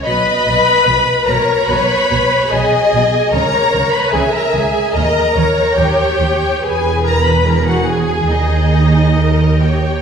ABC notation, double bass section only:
X:1
M:4/4
L:1/8
Q:1/4=72
K:G#m
V:1 name="Double bass section" clef=bass
B,,, B,,, B,,, B,,, B,,, B,,, B,,, B,,, | C,, C,, C,, C,, D,, D,, D,, D,, | E,,,4 D,,4 |]